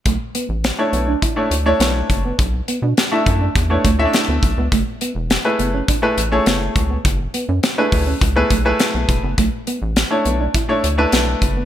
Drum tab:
HH |xxxxxxxx|xxxxxxxx|xxxxxxxx|xxxoxxxx|
SD |--o---o-|--o---o-|--o---o-|--o---o-|
BD |o---o--o|o--ooo-o|o---o--o|o--ooo-o|

HH |xxxxxxxx|
SD |--o---o-|
BD |o---o--o|